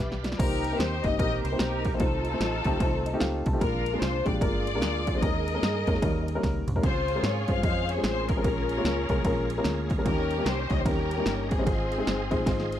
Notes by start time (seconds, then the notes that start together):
Already playing: G2 G4 D5 F5 B5
0.00 B1 G4 B4 E5
0.12 snare
0.23 F4 D5, snare, closed hi-hat
0.32 snare
0.39 C2 C3 A#3 C4 D#4 G4 A#4 C5, kick, crash, ride
0.64 ride
0.72 A#3 C4 D#4 G4 A#4
0.78 D#2 C5, snare, ride
1.03 G1 A#3 C4 D#4 G4 D#5, kick, ride
1.19 A#1 A#3 C4 D#4 G4 A#4 D#5, kick, ride
1.44 C2 C5, ride
1.52 A#3 C4 D#4 G4 C5
1.58 B1 D#4 G4 A#4, snare, ride
1.85 kick, ride
1.94 A#3 C4 D#4 G4 C5
1.99 C2 C3 A3 C4 D#4 F4 A4 C5, kick, ride
2.25 ride
2.33 A3 C4 D#4 F4 C5
2.40 A1, snare, ride
2.65 C#2 A3 C4 D#4 F4 G4, kick, ride
2.80 C2 A3 C4 D#4 F4 C5, kick, ride
3.06 D#5, ride
3.13 A3 C4 D#4 F4 G4
3.20 C#2 F5, snare, ride
3.46 C2 A5, kick, ride
3.53 A3 C4 D#4 F4 G4
3.60 A#1 A#2 G#3 A#3 D4 F4 A#4, kick, ride
3.86 ride
3.93 G#3 A#3 D4 F4 G#4
4.01 C2 C5, snare, ride
4.25 A#1 G#3 A#3 D4 F4 G4 D5, kick, ride
4.41 G1 G#3 A#3 D4 F4 G#4 A#4 D5, kick, ride
4.67 ride
4.75 G#3 A#3 D4 F4 A#4
4.82 D2, snare, ride
5.07 kick, ride
5.14 G#3 A#3 D4 F4 C5
5.22 D#2 D#3 G#3 A#3 C#4 D#4 G#4 A#4 D#5, kick, ride
5.48 ride
5.54 G#3 A#3 C#4 D#4 A#4
5.62 G2, snare, ride
5.87 F2 G#3 A#3 C#4 D#4 A#4, kick, ride
5.95 snare
6.02 D#2 D#3 G3 A#3 C#4 D#4 A#4, kick, ride
6.28 ride
6.35 G3 A#3 C#4 D#4 A#4
6.43 C#2, kick, snare, ride
6.67 C2, mid tom, ride
6.75 G3 A#3 C#4 D#4 A#4, floor tom
6.83 C#2 C#3 G#3 C4 C#4 F4 G#4 C5 F5 C6, kick, ride
7.08 ride
7.15 G#3 C4 C#4 F4 A#4
7.23 G#2 C#5, snare, ride
7.48 G2 G#3 C4 C#4 F4 C5 F5, kick, ride
7.63 F2 G#3 C4 C#4 F4 G#4 C5 D#5 F5, kick, ride
7.89 C#5, ride
7.97 G#3 C4 C#4 F4 G#4
8.03 A1 C5, snare, ride
8.29 C#4 F4 A#4, kick, ride
8.37 G#3 C4 C#4 F4 A#4
8.44 A#1 A#2 G#3 A#3 C#4 F4 A#4 F5 A#5, kick, ride
8.69 ride
8.77 G#3 A#3 C#4 F4 C#5
8.84 C#2, snare, ride
9.09 C2 G#3 A#3 C#4 F4 A#4, kick, ride
9.25 A#1 G#3 A#3 C#4 F4 A#4, kick, ride
9.50 ride
9.58 G#3 A#3 C#4 F4 A#4
9.64 D2, snare, ride
9.90 kick, ride
9.98 G#3 A#3 C#4 F4 A#4
10.04 D#2 D#3 G3 A#3 C#4 D#4 G4 A#4 C#5 D#5, kick, ride
10.31 ride
10.38 G3 A#3 C#4 D#4 A#4
10.45 C2 C5, snare, ride
10.70 C#2 G3 A#3 C#4 D#4 G4 D#5, kick, ride
10.78 C5
10.85 D#2 G3 A#3 C#4 D#4 G4 A#4, kick, ride
11.11 ride
11.18 G3 A#3 C#4 D#4 G4
11.26 G1, snare, ride
11.51 C4 F4 G#4, kick, ride
11.58 G3 A#3 C#4 D#4 C5
11.66 G#1 G#2 G#3 C4 D#4 F4 G#4 C5 F5 C6, kick, ride
11.92 ride
11.98 G#3 C4 D#4 F4 C5
12.07 G1, snare, ride
12.31 A#1 G#3 C4 D#4 F4 C5, kick, ride
12.46 G#1 G#3 C4 D#4 F4 C5, kick, snare, ride
12.60 snare
12.72 ride